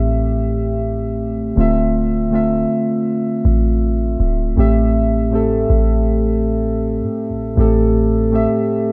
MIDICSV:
0, 0, Header, 1, 3, 480
1, 0, Start_track
1, 0, Tempo, 750000
1, 1005, Time_signature, 4, 2, 24, 8
1, 5711, End_track
2, 0, Start_track
2, 0, Title_t, "Synth keys"
2, 0, Program_c, 0, 88
2, 0, Control_c, 0, 64, 127
2, 0, Note_on_c, 0, 45, 82
2, 0, Note_on_c, 0, 57, 71
2, 0, Note_on_c, 0, 60, 73
2, 0, Note_on_c, 0, 67, 73
2, 0, Note_on_c, 0, 76, 92
2, 347, Note_off_c, 0, 45, 0
2, 351, Note_off_c, 0, 57, 0
2, 355, Note_off_c, 0, 60, 0
2, 359, Note_off_c, 0, 67, 0
2, 363, Note_off_c, 0, 76, 0
2, 995, Note_on_c, 0, 50, 82
2, 1003, Note_on_c, 0, 57, 73
2, 1010, Note_on_c, 0, 60, 74
2, 1014, Control_c, 0, 64, 0
2, 1019, Note_on_c, 0, 65, 78
2, 1027, Note_on_c, 0, 76, 92
2, 1118, Control_c, 0, 64, 127
2, 1394, Note_off_c, 0, 50, 0
2, 1398, Note_off_c, 0, 57, 0
2, 1402, Note_off_c, 0, 60, 0
2, 1406, Note_off_c, 0, 65, 0
2, 1410, Note_off_c, 0, 76, 0
2, 1474, Note_on_c, 0, 50, 78
2, 1482, Note_on_c, 0, 57, 77
2, 1489, Note_on_c, 0, 60, 73
2, 1498, Note_on_c, 0, 65, 79
2, 1505, Note_on_c, 0, 76, 85
2, 2268, Note_off_c, 0, 50, 0
2, 2272, Note_off_c, 0, 57, 0
2, 2276, Note_off_c, 0, 60, 0
2, 2280, Note_off_c, 0, 65, 0
2, 2284, Note_off_c, 0, 76, 0
2, 2913, Note_on_c, 0, 45, 81
2, 2921, Note_on_c, 0, 57, 75
2, 2928, Note_on_c, 0, 60, 77
2, 2935, Control_c, 0, 64, 0
2, 2936, Note_on_c, 0, 67, 74
2, 2944, Note_on_c, 0, 76, 95
2, 3034, Control_c, 0, 64, 127
2, 3313, Note_off_c, 0, 45, 0
2, 3317, Note_off_c, 0, 57, 0
2, 3321, Note_off_c, 0, 60, 0
2, 3325, Note_off_c, 0, 67, 0
2, 3329, Note_off_c, 0, 76, 0
2, 3393, Note_on_c, 0, 45, 81
2, 3400, Note_on_c, 0, 57, 76
2, 3408, Note_on_c, 0, 60, 75
2, 3416, Note_on_c, 0, 67, 77
2, 3424, Note_on_c, 0, 69, 87
2, 4187, Note_off_c, 0, 45, 0
2, 4191, Note_off_c, 0, 57, 0
2, 4195, Note_off_c, 0, 60, 0
2, 4199, Note_off_c, 0, 67, 0
2, 4203, Note_off_c, 0, 69, 0
2, 4834, Note_on_c, 0, 45, 86
2, 4842, Note_on_c, 0, 57, 79
2, 4850, Note_on_c, 0, 60, 77
2, 4858, Note_on_c, 0, 67, 81
2, 4866, Note_on_c, 0, 69, 93
2, 5234, Note_off_c, 0, 45, 0
2, 5238, Note_off_c, 0, 57, 0
2, 5242, Note_off_c, 0, 60, 0
2, 5246, Note_off_c, 0, 67, 0
2, 5250, Note_off_c, 0, 69, 0
2, 5314, Note_on_c, 0, 45, 80
2, 5322, Note_on_c, 0, 57, 72
2, 5330, Note_on_c, 0, 60, 77
2, 5338, Note_on_c, 0, 67, 74
2, 5345, Note_on_c, 0, 76, 91
2, 5711, Note_off_c, 0, 45, 0
2, 5711, Note_off_c, 0, 57, 0
2, 5711, Note_off_c, 0, 60, 0
2, 5711, Note_off_c, 0, 67, 0
2, 5711, Note_off_c, 0, 76, 0
2, 5711, End_track
3, 0, Start_track
3, 0, Title_t, "808-style bass"
3, 0, Program_c, 1, 38
3, 0, Note_on_c, 1, 33, 98
3, 981, Note_off_c, 1, 33, 0
3, 1007, Note_on_c, 1, 26, 97
3, 1701, Note_off_c, 1, 26, 0
3, 2208, Note_on_c, 1, 33, 100
3, 2668, Note_off_c, 1, 33, 0
3, 2688, Note_on_c, 1, 26, 100
3, 2917, Note_off_c, 1, 26, 0
3, 2927, Note_on_c, 1, 33, 102
3, 3621, Note_off_c, 1, 33, 0
3, 3648, Note_on_c, 1, 33, 104
3, 4489, Note_on_c, 1, 45, 96
3, 4498, Note_off_c, 1, 33, 0
3, 4668, Note_on_c, 1, 33, 93
3, 4678, Note_off_c, 1, 45, 0
3, 4838, Note_off_c, 1, 33, 0
3, 4848, Note_on_c, 1, 33, 106
3, 5423, Note_off_c, 1, 33, 0
3, 5711, End_track
0, 0, End_of_file